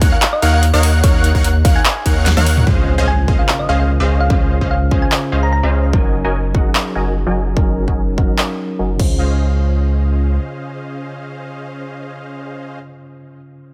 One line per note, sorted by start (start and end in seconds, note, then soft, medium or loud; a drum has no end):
0.01 0.14 D#2 loud
0.01 0.16 D#4 loud
0.01 0.16 A#4 medium
0.01 0.16 C#5 medium
0.01 0.16 F5 medium
0.01 0.16 F#5 loud
0.01 0.16 F#6 loud
0.01 kick loud
0.01 closed hi-hat medium
0.12 0.18 F5 medium
0.22 0.29 F5 medium
0.22 clap loud
0.22 closed hi-hat medium
0.33 0.40 D#5 medium
0.42 0.71 D#2 medium
0.42 0.65 D#4 medium
0.42 0.65 A#4 medium
0.42 0.65 C#5 medium
0.42 0.49 F5 medium
0.42 0.65 F5 medium
0.42 0.65 F#5 medium
0.42 0.65 F#6 medium
0.42 closed hi-hat medium
0.53 0.59 F5 medium
0.63 closed hi-hat medium
0.74 1.02 D#2 loud
0.74 1.01 D#4 medium
0.74 1.01 A#4 medium
0.74 1.01 C#5 medium
0.74 0.83 D#5 loud
0.74 1.01 F5 medium
0.74 1.01 F#5 loud
0.74 1.01 F#6 medium
0.83 open hi-hat loud
1.04 1.33 D#2 medium
1.04 1.32 D#4 medium
1.04 1.32 A#4 medium
1.04 1.32 C#5 medium
1.04 1.14 C#5 loud
1.04 1.32 F5 medium
1.04 1.32 F#5 medium
1.04 1.32 F#6 medium
1.04 kick loud
1.04 closed hi-hat medium
1.24 closed hi-hat medium
1.35 1.63 D#2 loud
1.35 1.48 D#4 loud
1.35 1.49 A#4 medium
1.35 1.49 C#5 medium
1.35 1.49 F5 medium
1.35 1.49 F#5 loud
1.35 1.49 F#6 loud
1.35 kick medium
1.44 closed hi-hat medium
1.65 1.77 D#2 medium
1.65 1.79 D#4 medium
1.65 1.79 A#4 medium
1.65 1.79 C#5 medium
1.65 1.73 F5 medium
1.65 1.79 F5 medium
1.65 1.79 F#5 loud
1.65 1.79 F#6 loud
1.65 kick loud
1.65 closed hi-hat medium
1.76 2.16 G#5 medium
1.85 clap loud
1.85 closed hi-hat medium
2.06 2.35 D#2 loud
2.06 2.28 D#4 medium
2.06 2.28 A#4 medium
2.06 2.28 C#5 medium
2.06 2.28 F5 medium
2.06 2.28 F#5 medium
2.06 2.28 F#6 medium
2.06 kick medium
2.06 closed hi-hat medium
2.26 snare medium
2.26 closed hi-hat medium
2.37 2.65 D#2 loud
2.37 2.65 D#4 medium
2.37 2.65 A#4 medium
2.37 2.65 C#5 medium
2.37 2.65 F5 medium
2.37 2.65 F#5 loud
2.37 2.65 F#6 loud
2.37 high tom medium
2.46 open hi-hat loud
2.57 mid tom medium
2.65 2.96 C#2 medium
2.65 3.25 C#3 medium
2.65 3.25 C#4 medium
2.65 2.95 C#4 medium
2.65 3.26 F4 medium
2.65 2.95 G#4 medium
2.65 2.95 C5 medium
2.65 3.27 C5 loud
2.65 2.95 D#5 medium
2.65 2.95 F5 medium
2.65 kick loud
2.65 impact medium
2.98 3.26 C#2 medium
2.98 3.12 C#4 medium
2.98 3.12 G#4 medium
2.98 3.12 C5 medium
2.98 3.12 D#5 medium
2.98 3.12 F5 loud
3.08 3.18 G#5 medium
3.26 3.41 C#2 medium
3.26 4.27 C#3 medium
3.26 4.28 C#4 medium
3.26 3.43 C#4 medium
3.26 4.28 F4 medium
3.26 3.43 G#4 medium
3.26 3.43 C5 medium
3.26 3.43 D#5 medium
3.26 3.43 F5 loud
3.26 kick medium
3.30 4.29 A#4 medium
3.39 3.45 F5 medium
3.49 3.55 F5 medium
3.49 clap loud
3.59 3.67 D#5 medium
3.69 3.98 C#2 medium
3.69 3.92 C#4 medium
3.69 3.92 G#4 medium
3.69 3.92 C5 medium
3.69 3.92 D#5 medium
3.69 3.92 F5 medium
3.69 3.76 F5 medium
3.80 3.86 F5 medium
4.00 4.28 C#2 medium
4.00 4.28 C#4 medium
4.00 4.28 G#4 medium
4.00 4.28 C5 medium
4.00 4.28 D#5 medium
4.00 4.28 F5 medium
4.20 4.30 F5 medium
4.28 4.59 C#2 medium
4.28 4.88 C#3 medium
4.28 4.89 C#4 medium
4.28 4.59 C#4 medium
4.28 4.89 F4 medium
4.28 4.59 G#4 medium
4.28 4.59 C5 medium
4.28 4.59 D#5 medium
4.28 4.59 F5 medium
4.28 kick loud
4.32 4.90 C5 loud
4.61 4.89 C#2 medium
4.61 4.75 C#4 medium
4.61 4.75 G#4 medium
4.61 4.75 C5 medium
4.61 4.75 D#5 medium
4.61 4.75 F5 loud
4.61 kick medium
4.71 4.82 F5 medium
4.90 5.04 C#2 medium
4.90 5.00 C#3 medium
4.90 5.00 C#4 medium
4.90 5.06 C#4 medium
4.90 5.01 F4 medium
4.90 5.06 G#4 medium
4.90 5.06 C5 medium
4.90 5.01 C5 medium
4.90 5.06 D#5 medium
4.90 5.06 F5 loud
4.90 kick medium
5.02 5.12 G#5 medium
5.12 clap loud
5.32 5.61 C#2 medium
5.32 5.55 C#4 medium
5.32 5.55 G#4 medium
5.32 5.55 C5 medium
5.32 5.55 D#5 medium
5.32 5.55 F5 medium
5.43 5.49 A#5 medium
5.53 5.59 A#5 medium
5.63 5.95 C#2 medium
5.63 5.91 C#4 medium
5.63 5.91 G#4 medium
5.63 5.91 C5 medium
5.63 5.91 D#5 medium
5.63 5.91 F5 medium
5.91 6.22 F#1 medium
5.91 6.51 F#3 medium
5.91 6.22 F#3 medium
5.91 6.52 C#4 medium
5.91 6.53 D#4 medium
5.91 6.22 F#4 medium
5.91 6.22 A#4 medium
5.91 6.22 D#5 medium
5.91 6.22 G#5 medium
5.91 kick loud
5.95 6.53 A#4 loud
6.25 6.53 F#1 medium
6.25 6.38 F#3 medium
6.25 6.38 F#4 medium
6.25 6.38 A#4 medium
6.25 6.38 D#5 medium
6.25 6.38 G#5 loud
6.53 6.67 F#1 medium
6.53 7.53 F#3 medium
6.53 6.69 F#3 medium
6.53 7.54 C#4 medium
6.53 7.55 D#4 medium
6.53 6.69 F#4 medium
6.53 6.69 A#4 medium
6.53 6.69 D#5 medium
6.53 6.69 F#5 loud
6.53 kick loud
6.57 7.55 G#4 medium
6.75 clap loud
6.95 7.24 F#1 medium
6.95 7.18 F#3 medium
6.95 7.18 F#4 medium
6.95 7.18 A#4 medium
6.95 7.18 D#5 medium
6.95 7.18 G#5 medium
7.27 7.55 F#1 medium
7.27 7.54 F#3 medium
7.27 7.54 F#4 medium
7.27 7.54 A#4 medium
7.27 7.54 D#5 medium
7.27 7.54 G#5 medium
7.55 7.86 F#1 medium
7.55 8.15 F#3 medium
7.55 7.85 F#3 medium
7.55 8.15 C#4 medium
7.55 8.16 D#4 medium
7.55 7.85 F#4 medium
7.55 7.85 A#4 medium
7.55 7.85 D#5 medium
7.55 7.85 G#5 medium
7.55 kick loud
7.59 8.17 A#4 loud
7.88 8.16 F#1 medium
7.88 8.02 F#3 medium
7.88 8.02 F#4 medium
7.88 8.02 A#4 medium
7.88 8.02 D#5 medium
7.88 8.02 G#5 loud
7.88 kick medium
8.17 8.30 F#1 medium
8.17 8.27 F#3 medium
8.17 8.32 F#3 medium
8.17 8.27 C#4 medium
8.17 8.27 D#4 medium
8.17 8.32 F#4 medium
8.17 8.32 A#4 medium
8.17 8.28 A#4 medium
8.17 8.32 D#5 medium
8.17 8.32 F#5 loud
8.17 kick medium
8.38 clap loud
8.79 8.98 F#1 medium
8.79 8.97 F#3 medium
8.79 8.97 F#4 medium
8.79 8.97 A#4 medium
8.79 8.97 D#5 medium
8.79 8.97 G#5 medium
8.96 10.38 C#2 medium
8.96 12.76 C#3 medium
8.96 12.78 C#4 medium
8.96 12.79 C#4 medium
8.96 12.80 F4 medium
8.96 12.79 G#4 medium
8.96 12.79 C5 medium
8.96 12.79 D#5 medium
8.96 12.79 F5 medium
8.96 kick loud
8.96 crash medium
9.02 12.82 C5 medium